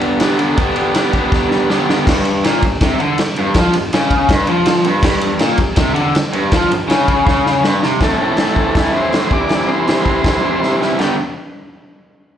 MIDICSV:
0, 0, Header, 1, 5, 480
1, 0, Start_track
1, 0, Key_signature, 1, "major"
1, 0, Tempo, 372208
1, 743, Time_signature, 4, 2, 24, 8
1, 15963, End_track
2, 0, Start_track
2, 0, Title_t, "Transistor combo organ"
2, 0, Program_c, 0, 18
2, 10359, Note_on_c, 0, 69, 89
2, 11299, Note_off_c, 0, 69, 0
2, 11314, Note_on_c, 0, 69, 83
2, 11524, Note_off_c, 0, 69, 0
2, 11555, Note_on_c, 0, 72, 92
2, 12029, Note_on_c, 0, 74, 106
2, 12036, Note_off_c, 0, 72, 0
2, 12482, Note_on_c, 0, 72, 94
2, 12513, Note_off_c, 0, 74, 0
2, 13878, Note_off_c, 0, 72, 0
2, 14178, Note_on_c, 0, 67, 86
2, 14400, Note_off_c, 0, 67, 0
2, 15963, End_track
3, 0, Start_track
3, 0, Title_t, "Overdriven electric guitar"
3, 0, Program_c, 1, 29
3, 0, Note_on_c, 1, 43, 90
3, 0, Note_on_c, 1, 55, 64
3, 0, Note_on_c, 1, 59, 65
3, 0, Note_on_c, 1, 62, 71
3, 0, Note_on_c, 1, 67, 77
3, 252, Note_off_c, 1, 43, 0
3, 257, Note_on_c, 1, 43, 75
3, 270, Note_on_c, 1, 50, 96
3, 272, Note_off_c, 1, 59, 0
3, 273, Note_off_c, 1, 55, 0
3, 278, Note_on_c, 1, 55, 89
3, 278, Note_on_c, 1, 59, 97
3, 279, Note_off_c, 1, 62, 0
3, 284, Note_on_c, 1, 62, 98
3, 290, Note_off_c, 1, 67, 0
3, 295, Note_on_c, 1, 67, 100
3, 485, Note_off_c, 1, 67, 0
3, 490, Note_on_c, 1, 67, 66
3, 502, Note_off_c, 1, 62, 0
3, 507, Note_on_c, 1, 62, 69
3, 514, Note_off_c, 1, 59, 0
3, 519, Note_on_c, 1, 59, 62
3, 523, Note_off_c, 1, 55, 0
3, 528, Note_on_c, 1, 55, 52
3, 717, Note_off_c, 1, 50, 0
3, 721, Note_off_c, 1, 43, 0
3, 722, Note_off_c, 1, 55, 0
3, 726, Note_on_c, 1, 43, 78
3, 730, Note_off_c, 1, 59, 0
3, 731, Note_off_c, 1, 62, 0
3, 732, Note_on_c, 1, 50, 98
3, 737, Note_on_c, 1, 55, 101
3, 743, Note_off_c, 1, 67, 0
3, 746, Note_on_c, 1, 59, 96
3, 747, Note_on_c, 1, 62, 93
3, 758, Note_on_c, 1, 67, 116
3, 959, Note_off_c, 1, 67, 0
3, 974, Note_on_c, 1, 67, 78
3, 979, Note_off_c, 1, 62, 0
3, 989, Note_off_c, 1, 59, 0
3, 994, Note_on_c, 1, 62, 68
3, 998, Note_off_c, 1, 55, 0
3, 1004, Note_on_c, 1, 59, 80
3, 1013, Note_on_c, 1, 55, 63
3, 1212, Note_off_c, 1, 55, 0
3, 1214, Note_off_c, 1, 43, 0
3, 1217, Note_off_c, 1, 50, 0
3, 1220, Note_off_c, 1, 59, 0
3, 1228, Note_on_c, 1, 55, 74
3, 1236, Note_on_c, 1, 59, 81
3, 1239, Note_off_c, 1, 62, 0
3, 1248, Note_off_c, 1, 67, 0
3, 1254, Note_on_c, 1, 62, 88
3, 1264, Note_on_c, 1, 67, 87
3, 1438, Note_off_c, 1, 67, 0
3, 1454, Note_on_c, 1, 67, 81
3, 1459, Note_off_c, 1, 62, 0
3, 1473, Note_off_c, 1, 59, 0
3, 1474, Note_on_c, 1, 62, 72
3, 1482, Note_off_c, 1, 55, 0
3, 1489, Note_on_c, 1, 59, 75
3, 1498, Note_on_c, 1, 55, 62
3, 2174, Note_off_c, 1, 55, 0
3, 2177, Note_on_c, 1, 43, 88
3, 2185, Note_on_c, 1, 50, 98
3, 2189, Note_off_c, 1, 62, 0
3, 2190, Note_on_c, 1, 55, 90
3, 2194, Note_off_c, 1, 59, 0
3, 2201, Note_off_c, 1, 67, 0
3, 2205, Note_on_c, 1, 62, 98
3, 2210, Note_on_c, 1, 59, 92
3, 2217, Note_on_c, 1, 67, 95
3, 2407, Note_off_c, 1, 67, 0
3, 2421, Note_off_c, 1, 62, 0
3, 2422, Note_on_c, 1, 67, 72
3, 2434, Note_off_c, 1, 59, 0
3, 2436, Note_on_c, 1, 62, 69
3, 2446, Note_off_c, 1, 55, 0
3, 2449, Note_on_c, 1, 59, 59
3, 2462, Note_on_c, 1, 55, 65
3, 2644, Note_off_c, 1, 43, 0
3, 2647, Note_off_c, 1, 67, 0
3, 2648, Note_off_c, 1, 50, 0
3, 2654, Note_off_c, 1, 62, 0
3, 2659, Note_on_c, 1, 43, 105
3, 2660, Note_off_c, 1, 59, 0
3, 2667, Note_off_c, 1, 55, 0
3, 3132, Note_off_c, 1, 43, 0
3, 3144, Note_on_c, 1, 46, 114
3, 3374, Note_off_c, 1, 46, 0
3, 3404, Note_on_c, 1, 43, 75
3, 3583, Note_off_c, 1, 43, 0
3, 3641, Note_on_c, 1, 48, 117
3, 3860, Note_off_c, 1, 48, 0
3, 3865, Note_on_c, 1, 50, 90
3, 4094, Note_off_c, 1, 50, 0
3, 4368, Note_on_c, 1, 43, 101
3, 4585, Note_off_c, 1, 43, 0
3, 4597, Note_on_c, 1, 53, 107
3, 4819, Note_off_c, 1, 53, 0
3, 4833, Note_on_c, 1, 43, 86
3, 5015, Note_off_c, 1, 43, 0
3, 5082, Note_on_c, 1, 49, 115
3, 5540, Note_off_c, 1, 49, 0
3, 5545, Note_on_c, 1, 43, 109
3, 5771, Note_off_c, 1, 43, 0
3, 5777, Note_on_c, 1, 53, 105
3, 6245, Note_on_c, 1, 43, 100
3, 6246, Note_off_c, 1, 53, 0
3, 6473, Note_off_c, 1, 43, 0
3, 6489, Note_on_c, 1, 43, 100
3, 6961, Note_off_c, 1, 43, 0
3, 6962, Note_on_c, 1, 46, 116
3, 7198, Note_off_c, 1, 46, 0
3, 7208, Note_on_c, 1, 43, 85
3, 7400, Note_off_c, 1, 43, 0
3, 7436, Note_on_c, 1, 48, 122
3, 7654, Note_off_c, 1, 48, 0
3, 7659, Note_on_c, 1, 50, 112
3, 7906, Note_off_c, 1, 50, 0
3, 8175, Note_on_c, 1, 43, 102
3, 8403, Note_off_c, 1, 43, 0
3, 8411, Note_on_c, 1, 53, 122
3, 8641, Note_off_c, 1, 53, 0
3, 8656, Note_on_c, 1, 43, 81
3, 8842, Note_off_c, 1, 43, 0
3, 8874, Note_on_c, 1, 49, 114
3, 9346, Note_off_c, 1, 49, 0
3, 9361, Note_on_c, 1, 49, 108
3, 9835, Note_off_c, 1, 49, 0
3, 9838, Note_on_c, 1, 43, 113
3, 10074, Note_off_c, 1, 43, 0
3, 10092, Note_on_c, 1, 48, 95
3, 10321, Note_off_c, 1, 48, 0
3, 10333, Note_on_c, 1, 52, 109
3, 10335, Note_on_c, 1, 45, 91
3, 10350, Note_on_c, 1, 60, 98
3, 10352, Note_on_c, 1, 57, 97
3, 10359, Note_on_c, 1, 64, 101
3, 10564, Note_off_c, 1, 45, 0
3, 10579, Note_on_c, 1, 45, 95
3, 10585, Note_off_c, 1, 57, 0
3, 10590, Note_off_c, 1, 52, 0
3, 10595, Note_on_c, 1, 52, 86
3, 10600, Note_on_c, 1, 57, 89
3, 10604, Note_off_c, 1, 60, 0
3, 10604, Note_off_c, 1, 64, 0
3, 10609, Note_on_c, 1, 60, 97
3, 10609, Note_on_c, 1, 64, 91
3, 10801, Note_off_c, 1, 45, 0
3, 10806, Note_off_c, 1, 57, 0
3, 10816, Note_off_c, 1, 52, 0
3, 10817, Note_on_c, 1, 45, 90
3, 10821, Note_on_c, 1, 52, 84
3, 10822, Note_on_c, 1, 57, 89
3, 10824, Note_off_c, 1, 60, 0
3, 10829, Note_on_c, 1, 60, 98
3, 10837, Note_off_c, 1, 64, 0
3, 10842, Note_on_c, 1, 64, 87
3, 11031, Note_off_c, 1, 45, 0
3, 11046, Note_on_c, 1, 45, 100
3, 11049, Note_off_c, 1, 52, 0
3, 11054, Note_on_c, 1, 52, 91
3, 11057, Note_off_c, 1, 57, 0
3, 11067, Note_off_c, 1, 60, 0
3, 11072, Note_on_c, 1, 57, 102
3, 11072, Note_on_c, 1, 60, 108
3, 11081, Note_off_c, 1, 64, 0
3, 11086, Note_on_c, 1, 64, 96
3, 11255, Note_off_c, 1, 45, 0
3, 11264, Note_off_c, 1, 52, 0
3, 11268, Note_off_c, 1, 57, 0
3, 11271, Note_on_c, 1, 45, 77
3, 11275, Note_off_c, 1, 60, 0
3, 11276, Note_off_c, 1, 64, 0
3, 11280, Note_on_c, 1, 52, 87
3, 11283, Note_on_c, 1, 57, 75
3, 11291, Note_on_c, 1, 60, 85
3, 11292, Note_on_c, 1, 64, 98
3, 11505, Note_off_c, 1, 45, 0
3, 11511, Note_off_c, 1, 52, 0
3, 11520, Note_off_c, 1, 57, 0
3, 11521, Note_on_c, 1, 45, 80
3, 11526, Note_on_c, 1, 52, 73
3, 11532, Note_off_c, 1, 60, 0
3, 11535, Note_on_c, 1, 57, 80
3, 11537, Note_off_c, 1, 64, 0
3, 11547, Note_on_c, 1, 60, 93
3, 11552, Note_on_c, 1, 64, 81
3, 11744, Note_off_c, 1, 45, 0
3, 11755, Note_off_c, 1, 52, 0
3, 11759, Note_on_c, 1, 45, 87
3, 11760, Note_off_c, 1, 57, 0
3, 11768, Note_off_c, 1, 64, 0
3, 11771, Note_on_c, 1, 52, 84
3, 11772, Note_off_c, 1, 60, 0
3, 11776, Note_on_c, 1, 57, 98
3, 11783, Note_on_c, 1, 64, 94
3, 11788, Note_on_c, 1, 60, 94
3, 11989, Note_off_c, 1, 45, 0
3, 11995, Note_off_c, 1, 52, 0
3, 11997, Note_off_c, 1, 57, 0
3, 12001, Note_off_c, 1, 64, 0
3, 12003, Note_off_c, 1, 60, 0
3, 12006, Note_on_c, 1, 48, 95
3, 12015, Note_on_c, 1, 55, 90
3, 12017, Note_on_c, 1, 52, 87
3, 12033, Note_on_c, 1, 60, 84
3, 12036, Note_on_c, 1, 64, 109
3, 12227, Note_off_c, 1, 48, 0
3, 12238, Note_off_c, 1, 52, 0
3, 12240, Note_off_c, 1, 55, 0
3, 12242, Note_on_c, 1, 48, 98
3, 12251, Note_off_c, 1, 60, 0
3, 12254, Note_on_c, 1, 52, 98
3, 12255, Note_on_c, 1, 55, 88
3, 12257, Note_off_c, 1, 64, 0
3, 12266, Note_on_c, 1, 60, 92
3, 12272, Note_on_c, 1, 64, 96
3, 12450, Note_off_c, 1, 48, 0
3, 12459, Note_off_c, 1, 52, 0
3, 12461, Note_off_c, 1, 55, 0
3, 12466, Note_on_c, 1, 48, 78
3, 12474, Note_on_c, 1, 52, 89
3, 12475, Note_off_c, 1, 60, 0
3, 12477, Note_on_c, 1, 55, 85
3, 12487, Note_off_c, 1, 64, 0
3, 12490, Note_on_c, 1, 60, 84
3, 12502, Note_on_c, 1, 64, 89
3, 12694, Note_off_c, 1, 48, 0
3, 12698, Note_off_c, 1, 52, 0
3, 12704, Note_off_c, 1, 55, 0
3, 12710, Note_on_c, 1, 48, 87
3, 12713, Note_on_c, 1, 52, 91
3, 12715, Note_off_c, 1, 60, 0
3, 12715, Note_off_c, 1, 64, 0
3, 12720, Note_on_c, 1, 55, 99
3, 12730, Note_on_c, 1, 60, 97
3, 12731, Note_on_c, 1, 64, 92
3, 12917, Note_off_c, 1, 48, 0
3, 12930, Note_off_c, 1, 52, 0
3, 12932, Note_on_c, 1, 48, 108
3, 12943, Note_off_c, 1, 60, 0
3, 12944, Note_off_c, 1, 55, 0
3, 12945, Note_off_c, 1, 64, 0
3, 12945, Note_on_c, 1, 52, 94
3, 12958, Note_on_c, 1, 60, 112
3, 12960, Note_on_c, 1, 55, 114
3, 12960, Note_on_c, 1, 64, 97
3, 13170, Note_off_c, 1, 48, 0
3, 13174, Note_off_c, 1, 52, 0
3, 13185, Note_on_c, 1, 48, 89
3, 13188, Note_off_c, 1, 55, 0
3, 13190, Note_on_c, 1, 52, 83
3, 13192, Note_off_c, 1, 60, 0
3, 13192, Note_off_c, 1, 64, 0
3, 13203, Note_on_c, 1, 55, 90
3, 13207, Note_on_c, 1, 60, 92
3, 13208, Note_on_c, 1, 64, 87
3, 13422, Note_off_c, 1, 48, 0
3, 13427, Note_off_c, 1, 52, 0
3, 13431, Note_off_c, 1, 55, 0
3, 13438, Note_on_c, 1, 48, 80
3, 13442, Note_on_c, 1, 52, 78
3, 13443, Note_off_c, 1, 60, 0
3, 13447, Note_on_c, 1, 55, 88
3, 13452, Note_off_c, 1, 64, 0
3, 13458, Note_on_c, 1, 60, 86
3, 13468, Note_on_c, 1, 64, 83
3, 13655, Note_off_c, 1, 48, 0
3, 13665, Note_off_c, 1, 52, 0
3, 13670, Note_on_c, 1, 48, 83
3, 13674, Note_off_c, 1, 55, 0
3, 13678, Note_off_c, 1, 60, 0
3, 13680, Note_on_c, 1, 52, 96
3, 13683, Note_off_c, 1, 64, 0
3, 13689, Note_on_c, 1, 55, 94
3, 13693, Note_on_c, 1, 60, 99
3, 13699, Note_on_c, 1, 64, 98
3, 13912, Note_off_c, 1, 48, 0
3, 13912, Note_off_c, 1, 52, 0
3, 13921, Note_off_c, 1, 60, 0
3, 13925, Note_off_c, 1, 55, 0
3, 13927, Note_off_c, 1, 64, 0
3, 13927, Note_on_c, 1, 48, 76
3, 13928, Note_on_c, 1, 52, 67
3, 13937, Note_on_c, 1, 60, 94
3, 13940, Note_on_c, 1, 55, 72
3, 13943, Note_on_c, 1, 64, 91
3, 14154, Note_off_c, 1, 55, 0
3, 14156, Note_off_c, 1, 48, 0
3, 14156, Note_off_c, 1, 52, 0
3, 14161, Note_off_c, 1, 60, 0
3, 14164, Note_off_c, 1, 64, 0
3, 14167, Note_on_c, 1, 43, 84
3, 14169, Note_on_c, 1, 55, 97
3, 14170, Note_on_c, 1, 50, 84
3, 14178, Note_on_c, 1, 59, 95
3, 14180, Note_on_c, 1, 62, 108
3, 14363, Note_off_c, 1, 43, 0
3, 14364, Note_off_c, 1, 50, 0
3, 14364, Note_off_c, 1, 55, 0
3, 14368, Note_off_c, 1, 59, 0
3, 14369, Note_off_c, 1, 62, 0
3, 15963, End_track
4, 0, Start_track
4, 0, Title_t, "Muted overdriven electric guitar strokes"
4, 4137, Note_on_c, 9, 29, 56
4, 4266, Note_off_c, 9, 29, 0
4, 7926, Note_on_c, 9, 29, 57
4, 8055, Note_off_c, 9, 29, 0
4, 15963, End_track
5, 0, Start_track
5, 0, Title_t, "Drums"
5, 17, Note_on_c, 9, 51, 62
5, 146, Note_off_c, 9, 51, 0
5, 254, Note_on_c, 9, 51, 91
5, 272, Note_on_c, 9, 38, 106
5, 383, Note_off_c, 9, 51, 0
5, 401, Note_off_c, 9, 38, 0
5, 501, Note_on_c, 9, 51, 71
5, 630, Note_off_c, 9, 51, 0
5, 740, Note_on_c, 9, 51, 88
5, 745, Note_on_c, 9, 36, 111
5, 869, Note_off_c, 9, 51, 0
5, 874, Note_off_c, 9, 36, 0
5, 977, Note_on_c, 9, 51, 70
5, 1106, Note_off_c, 9, 51, 0
5, 1218, Note_on_c, 9, 51, 91
5, 1236, Note_on_c, 9, 38, 104
5, 1347, Note_off_c, 9, 51, 0
5, 1365, Note_off_c, 9, 38, 0
5, 1459, Note_on_c, 9, 51, 66
5, 1464, Note_on_c, 9, 36, 76
5, 1588, Note_off_c, 9, 51, 0
5, 1593, Note_off_c, 9, 36, 0
5, 1703, Note_on_c, 9, 36, 115
5, 1716, Note_on_c, 9, 38, 63
5, 1832, Note_off_c, 9, 36, 0
5, 1845, Note_off_c, 9, 38, 0
5, 1949, Note_on_c, 9, 38, 61
5, 2078, Note_off_c, 9, 38, 0
5, 2193, Note_on_c, 9, 38, 82
5, 2322, Note_off_c, 9, 38, 0
5, 2444, Note_on_c, 9, 38, 90
5, 2573, Note_off_c, 9, 38, 0
5, 2670, Note_on_c, 9, 36, 113
5, 2673, Note_on_c, 9, 49, 111
5, 2691, Note_on_c, 9, 38, 115
5, 2799, Note_off_c, 9, 36, 0
5, 2802, Note_off_c, 9, 49, 0
5, 2820, Note_off_c, 9, 38, 0
5, 2902, Note_on_c, 9, 51, 78
5, 3031, Note_off_c, 9, 51, 0
5, 3151, Note_on_c, 9, 51, 115
5, 3169, Note_on_c, 9, 38, 119
5, 3280, Note_off_c, 9, 51, 0
5, 3298, Note_off_c, 9, 38, 0
5, 3384, Note_on_c, 9, 51, 74
5, 3387, Note_on_c, 9, 36, 89
5, 3513, Note_off_c, 9, 51, 0
5, 3516, Note_off_c, 9, 36, 0
5, 3619, Note_on_c, 9, 51, 98
5, 3626, Note_on_c, 9, 36, 113
5, 3637, Note_on_c, 9, 38, 114
5, 3748, Note_off_c, 9, 51, 0
5, 3755, Note_off_c, 9, 36, 0
5, 3766, Note_off_c, 9, 38, 0
5, 3867, Note_on_c, 9, 51, 68
5, 3996, Note_off_c, 9, 51, 0
5, 4098, Note_on_c, 9, 51, 102
5, 4117, Note_on_c, 9, 38, 108
5, 4227, Note_off_c, 9, 51, 0
5, 4245, Note_off_c, 9, 38, 0
5, 4337, Note_on_c, 9, 51, 67
5, 4466, Note_off_c, 9, 51, 0
5, 4568, Note_on_c, 9, 51, 110
5, 4577, Note_on_c, 9, 36, 108
5, 4586, Note_on_c, 9, 38, 118
5, 4697, Note_off_c, 9, 51, 0
5, 4706, Note_off_c, 9, 36, 0
5, 4715, Note_off_c, 9, 38, 0
5, 4816, Note_on_c, 9, 51, 86
5, 4945, Note_off_c, 9, 51, 0
5, 5063, Note_on_c, 9, 51, 102
5, 5081, Note_on_c, 9, 38, 114
5, 5192, Note_off_c, 9, 51, 0
5, 5210, Note_off_c, 9, 38, 0
5, 5293, Note_on_c, 9, 36, 85
5, 5295, Note_on_c, 9, 51, 83
5, 5422, Note_off_c, 9, 36, 0
5, 5424, Note_off_c, 9, 51, 0
5, 5531, Note_on_c, 9, 36, 116
5, 5535, Note_on_c, 9, 51, 117
5, 5553, Note_on_c, 9, 38, 115
5, 5660, Note_off_c, 9, 36, 0
5, 5664, Note_off_c, 9, 51, 0
5, 5682, Note_off_c, 9, 38, 0
5, 5764, Note_on_c, 9, 51, 73
5, 5893, Note_off_c, 9, 51, 0
5, 6003, Note_on_c, 9, 51, 110
5, 6021, Note_on_c, 9, 38, 118
5, 6132, Note_off_c, 9, 51, 0
5, 6150, Note_off_c, 9, 38, 0
5, 6247, Note_on_c, 9, 51, 82
5, 6376, Note_off_c, 9, 51, 0
5, 6483, Note_on_c, 9, 36, 122
5, 6484, Note_on_c, 9, 57, 106
5, 6502, Note_on_c, 9, 38, 117
5, 6612, Note_off_c, 9, 36, 0
5, 6613, Note_off_c, 9, 57, 0
5, 6631, Note_off_c, 9, 38, 0
5, 6723, Note_on_c, 9, 51, 91
5, 6852, Note_off_c, 9, 51, 0
5, 6954, Note_on_c, 9, 51, 110
5, 6972, Note_on_c, 9, 38, 115
5, 7082, Note_off_c, 9, 51, 0
5, 7101, Note_off_c, 9, 38, 0
5, 7190, Note_on_c, 9, 51, 81
5, 7200, Note_on_c, 9, 36, 88
5, 7319, Note_off_c, 9, 51, 0
5, 7329, Note_off_c, 9, 36, 0
5, 7428, Note_on_c, 9, 51, 104
5, 7442, Note_on_c, 9, 36, 123
5, 7446, Note_on_c, 9, 38, 127
5, 7557, Note_off_c, 9, 51, 0
5, 7571, Note_off_c, 9, 36, 0
5, 7575, Note_off_c, 9, 38, 0
5, 7685, Note_on_c, 9, 51, 75
5, 7814, Note_off_c, 9, 51, 0
5, 7928, Note_on_c, 9, 51, 97
5, 7946, Note_on_c, 9, 38, 121
5, 8057, Note_off_c, 9, 51, 0
5, 8075, Note_off_c, 9, 38, 0
5, 8166, Note_on_c, 9, 51, 73
5, 8295, Note_off_c, 9, 51, 0
5, 8403, Note_on_c, 9, 51, 95
5, 8410, Note_on_c, 9, 36, 108
5, 8421, Note_on_c, 9, 38, 123
5, 8532, Note_off_c, 9, 51, 0
5, 8539, Note_off_c, 9, 36, 0
5, 8550, Note_off_c, 9, 38, 0
5, 8659, Note_on_c, 9, 51, 85
5, 8788, Note_off_c, 9, 51, 0
5, 8893, Note_on_c, 9, 51, 93
5, 8911, Note_on_c, 9, 38, 121
5, 9022, Note_off_c, 9, 51, 0
5, 9040, Note_off_c, 9, 38, 0
5, 9131, Note_on_c, 9, 36, 80
5, 9131, Note_on_c, 9, 51, 74
5, 9259, Note_off_c, 9, 36, 0
5, 9260, Note_off_c, 9, 51, 0
5, 9370, Note_on_c, 9, 36, 117
5, 9390, Note_on_c, 9, 38, 67
5, 9499, Note_off_c, 9, 36, 0
5, 9519, Note_off_c, 9, 38, 0
5, 9623, Note_on_c, 9, 38, 66
5, 9752, Note_off_c, 9, 38, 0
5, 9854, Note_on_c, 9, 38, 96
5, 9983, Note_off_c, 9, 38, 0
5, 10099, Note_on_c, 9, 38, 87
5, 10228, Note_off_c, 9, 38, 0
5, 10322, Note_on_c, 9, 46, 52
5, 10325, Note_on_c, 9, 36, 107
5, 10340, Note_on_c, 9, 38, 106
5, 10451, Note_off_c, 9, 46, 0
5, 10454, Note_off_c, 9, 36, 0
5, 10469, Note_off_c, 9, 38, 0
5, 10792, Note_on_c, 9, 46, 57
5, 10810, Note_on_c, 9, 38, 113
5, 10920, Note_off_c, 9, 46, 0
5, 10939, Note_off_c, 9, 38, 0
5, 11043, Note_on_c, 9, 36, 83
5, 11172, Note_off_c, 9, 36, 0
5, 11286, Note_on_c, 9, 36, 111
5, 11289, Note_on_c, 9, 46, 51
5, 11307, Note_on_c, 9, 38, 117
5, 11415, Note_off_c, 9, 36, 0
5, 11418, Note_off_c, 9, 46, 0
5, 11436, Note_off_c, 9, 38, 0
5, 11770, Note_on_c, 9, 46, 53
5, 11788, Note_on_c, 9, 38, 108
5, 11899, Note_off_c, 9, 46, 0
5, 11917, Note_off_c, 9, 38, 0
5, 12005, Note_on_c, 9, 36, 99
5, 12133, Note_off_c, 9, 36, 0
5, 12240, Note_on_c, 9, 46, 47
5, 12258, Note_on_c, 9, 38, 94
5, 12369, Note_off_c, 9, 46, 0
5, 12387, Note_off_c, 9, 38, 0
5, 12735, Note_on_c, 9, 46, 56
5, 12753, Note_on_c, 9, 38, 107
5, 12864, Note_off_c, 9, 46, 0
5, 12882, Note_off_c, 9, 38, 0
5, 12969, Note_on_c, 9, 36, 82
5, 13098, Note_off_c, 9, 36, 0
5, 13211, Note_on_c, 9, 36, 107
5, 13213, Note_on_c, 9, 46, 55
5, 13231, Note_on_c, 9, 38, 114
5, 13340, Note_off_c, 9, 36, 0
5, 13342, Note_off_c, 9, 46, 0
5, 13360, Note_off_c, 9, 38, 0
5, 13706, Note_on_c, 9, 38, 54
5, 13835, Note_off_c, 9, 38, 0
5, 13952, Note_on_c, 9, 38, 67
5, 14081, Note_off_c, 9, 38, 0
5, 14169, Note_on_c, 9, 57, 73
5, 14187, Note_on_c, 9, 38, 95
5, 14298, Note_off_c, 9, 57, 0
5, 14316, Note_off_c, 9, 38, 0
5, 15963, End_track
0, 0, End_of_file